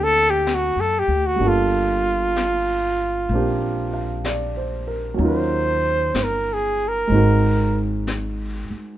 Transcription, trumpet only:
0.03 A4
0.30 G4
0.54 F#4
0.80 A4
0.99 G4
1.26 F#4
1.48 F4
5.28 C5
6.24 A#4
6.53 G#4
6.88 A#4

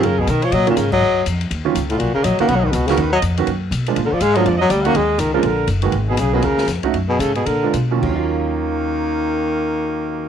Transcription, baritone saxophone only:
0.06 C#3
0.21 B2
0.30 D#3
0.45 F3
0.54 F#3
0.70 A#2
0.78 C#3
0.92 F#3
1.90 A2
1.99 A#2
2.14 C#3
2.25 F#3
2.41 A#3
2.49 B3
2.56 F#3
2.64 D#3
2.72 B2
2.87 C#3
2.98 D#3
3.12 F#3
4.05 D3
4.14 F3
4.22 G#3
4.36 F#3
4.49 F3
4.61 F#3
4.71 G3
4.87 A#3
4.96 G#3
5.20 D#3
5.35 C#3
5.46 D3
6.10 B2
6.20 C#3
6.34 B2
6.44 C#3
7.09 B2
7.20 C#3
7.36 B2
7.46 D3
8.01 D#3

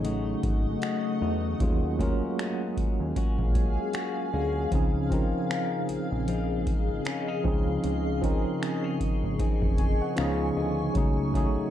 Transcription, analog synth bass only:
Already playing: A1
0.44 G#1
1.22 E2
1.60 D#2
2.22 D#2
2.77 D#2
3.00 D#2
3.39 A#1
4.34 D2
4.72 C#2
5.34 A#1
5.89 A#1
6.12 A#1
6.67 G#1
7.45 C#2
7.84 C#2
8.46 G#1
9.01 G#1
9.24 G#1
9.62 F1
10.18 C#2
10.57 D2
10.95 C#2
11.57 A1

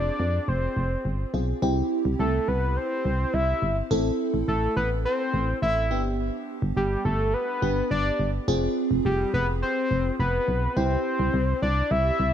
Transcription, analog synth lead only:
Already playing: D5
0.48 C5
2.20 A4
2.48 B4
2.77 C5
3.34 E5
4.48 A4
4.77 B4
5.05 C5
5.62 E5
6.77 G4
7.05 A4
7.34 B4
7.91 D5
9.05 G4
9.34 B4
9.62 C5
10.20 B4
10.77 C5
11.62 D5
11.91 E5

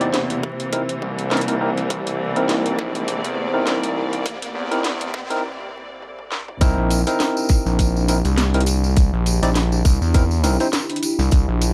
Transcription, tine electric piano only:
0.01 C4 D#4 E4 D5
0.73 C4 D#4 E4 A#4
1.32 C4 D#4 E4 A#4
1.48 C4 D#4 E4 A#4
1.61 C4 D#4 E4 A#4
2.36 C4 D#4 E4 A#4
3.54 C4 D#4 E4 A#4
4.71 C4 D#4 E4 A#4
5.30 C4 D#4 E4 A#4
6.61 C4 D#4 E4 A#4
7.07 C4 D#4 E4 A#4
8.09 C4 D#4 E4 A#4
8.54 C4 D#4 E4 A#4
9.43 C4 D#4 E4 D5
10.15 C4 D#4 E4 A#4
10.44 C4 D#4 E4 A#4
10.60 C4 D#4 E4 C5

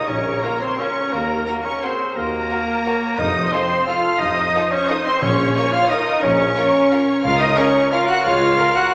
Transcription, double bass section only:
0.09 A#1
1.13 D#2
2.16 D#2
3.19 F2
4.20 F2
5.22 A#1
6.23 A#1
7.25 C#2
8.25 C#2

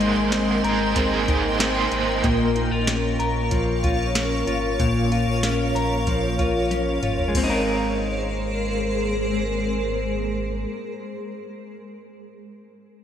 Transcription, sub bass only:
Already playing: G#1
0.17 G#1
0.64 G#1
1.92 G#1
2.24 A#1
2.72 A#1
3.20 A#1
4.47 G#1
4.80 A#1
5.27 A#1
5.75 A#1
7.02 G1
7.35 G#1

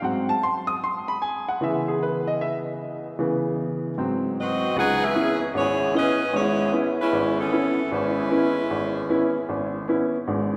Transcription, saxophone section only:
4.40 C4 F#4 B4 D#5
4.79 D#4 G#4 B4 F#5
5.04 C#4 G#4 B4 E5
5.57 B3 E4 G#4 C#5
5.97 C#4 G#4 B4 D#5
6.36 B3 E4 G#4 C#5
7.01 G#3 C#4 E4 B4
7.40 E3 B3 C#4 A4
7.93 G#3 C#4 E4 B4

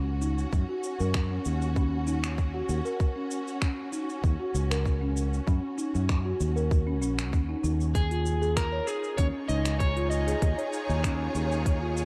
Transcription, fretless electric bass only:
Already playing: C#2
0.53 F#2
1.00 F#2
1.46 D#2
2.69 D#2
4.24 D#2
4.54 C#2
5.48 F#2
5.95 F#2
6.40 D#2
7.02 A#1
7.33 D#2
7.64 D#2
9.18 D#2
9.49 C#2
10.42 D#2
10.89 D#2
11.35 D#2

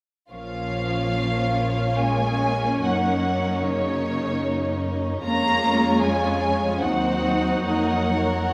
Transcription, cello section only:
0.31 F3
1.99 G#3
2.82 F#3
3.64 C#3
5.25 A#3
6.03 G#3
6.83 F#3
7.66 F#3

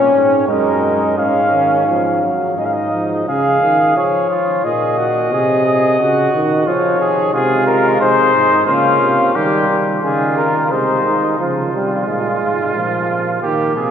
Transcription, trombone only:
Already playing: C#4
0.48 G#3
1.18 G#3
1.52 D#3
1.88 F3
2.23 F#3
2.58 G#3
2.93 F3
7.33 G#3
8.67 A#3
9.35 G3
10.03 D#3
10.71 G#3
11.40 F3
11.74 G3
12.07 G#3
12.75 F3
13.42 A#3

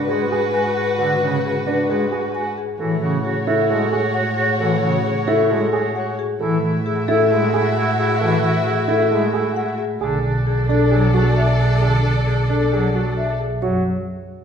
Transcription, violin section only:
Already playing: F#4 B4
2.79 F#4 C#5
6.41 F#4 E5
10.01 A4 D5

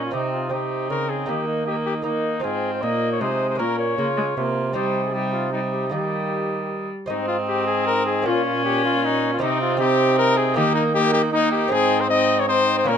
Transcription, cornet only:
0.05 F4
0.14 D#4
0.33 F4
0.52 G4
0.90 A#4
1.10 G#4
1.28 G4
1.47 D#4
1.67 G4
1.86 G4
2.05 D#4
2.43 G#4
2.73 C5
2.82 D#5
3.12 C#5
3.21 C5
3.50 C5
3.59 A#4
3.79 C#5
4.75 C5
5.04 G#4
5.13 G4
5.33 F4
5.52 D#4
5.73 G4
5.93 G4
7.10 D#4
7.28 F4
7.48 G4
7.67 G#4
7.87 A#4
8.06 G#4
8.26 F4
8.45 F4
8.65 G4
8.85 F4
9.05 D#4
9.33 F4
9.42 D#4
9.62 F4
9.80 G4
10.19 A#4
10.37 G#4
10.57 G4
10.75 D#4
10.95 G4
11.14 G4
11.34 D#4
11.52 G4
11.72 G#4
12.00 C5
12.10 D#5
12.40 C#5
12.49 C5
12.79 C5
12.88 A#4

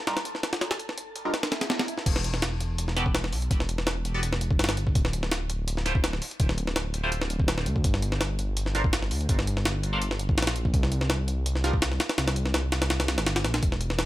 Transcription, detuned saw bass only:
2.06 E1
3.32 B1
3.51 E1
4.59 G1
4.95 D1
6.40 D1
7.66 D2
7.84 G1
9.11 D2
9.29 G1
10.38 A#1
10.74 C2
12.18 C2
13.18 G1
13.45 A#1
13.63 E1

